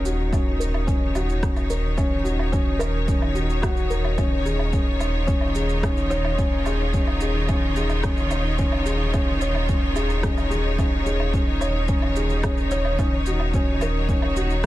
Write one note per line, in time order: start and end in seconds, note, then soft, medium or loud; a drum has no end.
0.00 4.16 D#1 loud
0.00 14.66 D#3 medium
0.00 0.32 C#4 loud
0.00 14.66 D#4 medium
0.00 0.06 F#4 medium
0.00 0.60 A#4 loud
0.00 14.66 C#5 medium
0.05 0.32 F#4 medium
0.05 shaker medium
0.32 0.59 C#4 medium
0.32 kick loud
0.32 low woodblock medium
0.32 shaker soft
0.60 0.86 A#4 medium
0.60 shaker medium
0.74 low woodblock medium
0.87 1.14 C#4 medium
0.87 kick loud
0.87 shaker soft
1.15 1.42 F#4 medium
1.15 low woodblock medium
1.15 shaker medium
1.29 shaker soft
1.42 1.69 C#4 medium
1.42 kick loud
1.42 cross-stick medium
1.42 shaker soft
1.56 low woodblock medium
1.56 shaker soft
1.70 1.96 A#4 medium
1.70 shaker medium
1.97 2.13 C#4 loud
1.97 kick loud
1.97 low woodblock medium
1.97 shaker soft
2.24 2.51 F#4 medium
2.24 shaker medium
2.39 low woodblock medium
2.52 2.79 C#4 loud
2.52 kick loud
2.52 shaker soft
2.79 3.06 A#4 loud
2.79 low woodblock medium
2.79 shaker medium
3.07 3.34 C#4 medium
3.07 kick loud
3.07 shaker soft
3.22 low woodblock medium
3.35 3.61 F#4 medium
3.35 shaker medium
3.50 shaker soft
3.62 3.89 F#4 loud
3.62 kick loud
3.62 cross-stick medium
3.62 low woodblock medium
3.62 shaker soft
3.77 shaker soft
3.90 4.17 A#4 medium
3.90 shaker medium
4.05 low woodblock medium
4.18 12.96 D#1 medium
4.18 4.44 C#4 medium
4.18 kick loud
4.18 low woodblock medium
4.18 shaker soft
4.45 4.72 G#4 medium
4.45 shaker medium
4.59 low woodblock medium
4.69 13.00 F4 medium
4.73 4.99 C#4 medium
4.73 kick loud
4.73 shaker soft
5.00 5.27 C#5 medium
5.00 low woodblock medium
5.00 shaker medium
5.27 5.43 C#4 loud
5.27 kick loud
5.27 shaker soft
5.41 low woodblock medium
5.55 5.82 G#4 medium
5.55 shaker medium
5.69 shaker soft
5.83 6.09 C#4 loud
5.83 kick loud
5.83 cross-stick medium
5.83 low woodblock medium
5.83 shaker soft
5.97 shaker soft
6.10 6.37 C#5 loud
6.10 shaker medium
6.25 low woodblock medium
6.38 6.65 C#4 medium
6.38 kick loud
6.38 shaker soft
6.66 6.93 G#4 medium
6.66 low woodblock medium
6.66 shaker medium
6.94 7.20 C#4 medium
6.94 kick loud
6.94 shaker soft
7.07 low woodblock medium
7.21 7.37 G#4 medium
7.21 shaker medium
7.49 7.75 C#4 medium
7.49 kick loud
7.49 low woodblock medium
7.49 shaker soft
7.76 8.03 G#4 medium
7.76 shaker medium
7.89 low woodblock medium
7.89 shaker soft
8.04 8.30 C#4 medium
8.04 kick loud
8.04 cross-stick medium
8.04 shaker soft
8.17 shaker soft
8.31 8.57 C#5 medium
8.31 low woodblock medium
8.31 shaker medium
8.58 8.74 C#4 loud
8.58 kick loud
8.58 shaker soft
8.72 low woodblock medium
8.86 9.12 G#4 medium
8.86 shaker medium
9.13 9.40 C#4 loud
9.13 kick loud
9.13 low woodblock medium
9.13 shaker soft
9.41 9.68 C#5 medium
9.41 shaker medium
9.55 low woodblock medium
9.69 9.95 C#4 medium
9.69 kick loud
9.69 shaker soft
9.96 10.22 G#4 medium
9.96 low woodblock medium
9.96 shaker medium
10.10 shaker soft
10.23 10.50 C#4 medium
10.23 kick loud
10.23 cross-stick medium
10.23 shaker soft
10.38 low woodblock medium
10.38 shaker soft
10.50 10.67 G#4 medium
10.50 shaker medium
10.79 11.05 C#4 medium
10.79 kick loud
10.79 low woodblock medium
10.79 shaker soft
11.06 11.32 G#4 medium
11.06 shaker medium
11.20 low woodblock medium
11.34 11.60 C#4 medium
11.34 kick loud
11.34 shaker soft
11.61 11.87 C#5 medium
11.61 low woodblock medium
11.61 shaker medium
11.88 12.04 C#4 loud
11.88 kick loud
11.88 shaker soft
12.02 low woodblock medium
12.16 12.43 G#4 medium
12.16 shaker medium
12.30 shaker soft
12.43 12.70 C#4 medium
12.43 kick loud
12.43 cross-stick medium
12.43 low woodblock medium
12.43 shaker soft
12.57 shaker soft
12.71 12.98 C#5 loud
12.71 shaker medium
12.85 low woodblock medium
12.99 14.66 D#1 medium
12.99 13.15 C#4 loud
12.99 kick loud
12.99 low woodblock medium
12.99 shaker soft
13.26 13.53 F#4 medium
13.26 shaker medium
13.40 low woodblock medium
13.54 13.81 C#4 loud
13.54 kick loud
13.54 shaker soft
13.81 14.08 A#4 medium
13.81 low woodblock medium
13.81 shaker medium
13.99 14.66 F#4 medium
14.09 14.36 C#4 medium
14.09 kick loud
14.09 shaker soft
14.22 low woodblock medium
14.36 14.63 F#4 medium
14.36 shaker medium
14.50 shaker soft